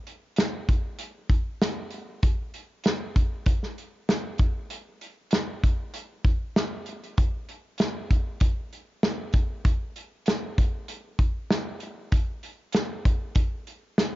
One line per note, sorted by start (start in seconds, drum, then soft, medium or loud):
0.07 closed hi-hat medium
0.36 snare loud
0.36 closed hi-hat medium
0.69 kick medium
0.69 closed hi-hat medium
0.99 closed hi-hat medium
1.30 kick medium
1.30 closed hi-hat medium
1.62 snare loud
1.62 closed hi-hat medium
1.91 closed hi-hat medium
2.23 kick loud
2.23 closed hi-hat medium
2.54 closed hi-hat medium
2.84 snare loud
2.84 closed hi-hat medium
3.16 kick medium
3.16 closed hi-hat medium
3.46 kick medium
3.46 closed hi-hat medium
3.63 snare soft
3.78 closed hi-hat medium
4.09 snare loud
4.09 closed hi-hat medium
4.38 kick medium
4.38 closed hi-hat medium
4.70 closed hi-hat medium
5.01 closed hi-hat medium
5.31 snare medium
5.31 closed hi-hat medium
5.64 kick medium
5.64 closed hi-hat medium
5.94 closed hi-hat medium
6.25 kick medium
6.25 closed hi-hat medium
6.56 snare loud
6.56 closed hi-hat medium
6.86 closed hi-hat medium
7.04 closed hi-hat soft
7.18 kick loud
7.18 closed hi-hat medium
7.49 closed hi-hat medium
7.78 snare loud
7.78 closed hi-hat medium
8.11 kick medium
8.11 closed hi-hat medium
8.40 kick medium
8.40 closed hi-hat medium
8.73 closed hi-hat medium
9.03 snare loud
9.03 closed hi-hat medium
9.33 kick medium
9.33 closed hi-hat medium
9.65 kick medium
9.65 closed hi-hat medium
9.96 closed hi-hat medium
10.26 snare loud
10.26 closed hi-hat loud
10.58 kick medium
10.58 closed hi-hat medium
10.88 closed hi-hat medium
11.19 kick medium
11.19 closed hi-hat medium
11.51 snare loud
11.51 closed hi-hat medium
11.80 closed hi-hat medium
12.12 kick medium
12.12 closed hi-hat medium
12.43 closed hi-hat medium
12.72 snare loud
12.72 closed hi-hat medium
13.05 kick medium
13.05 closed hi-hat medium
13.35 kick medium
13.35 closed hi-hat medium
13.67 closed hi-hat medium
13.98 snare loud
13.98 closed hi-hat medium